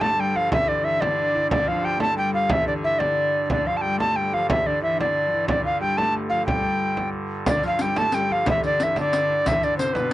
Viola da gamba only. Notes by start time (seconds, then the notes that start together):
0.00 A3
0.17 G3
0.34 F3
0.49 E3
0.55 D3 E3
0.65 D3
0.83 E3
1.00 D3
1.51 D3
1.67 F3
2.00 A3
2.16 G3
2.50 E3
2.66 D3
2.99 D3
3.50 D3
3.65 F3
3.83 G3
3.98 A3
4.17 G3
4.34 F3
4.49 E3
4.67 D3
4.84 E3
5.01 D3
5.27 E3 F3
5.50 D3
5.55 E3
5.62 D3
5.81 G3
5.99 A3
6.32 F3
6.47 G3
7.48 D3
7.63 F3
7.81 G3
7.97 A3
8.13 G3
8.31 F3
8.47 E3
8.63 D3
8.81 E3
8.95 D3
9.45 E3
9.56 E3
9.61 D3
9.74 C3 D3
9.95 B2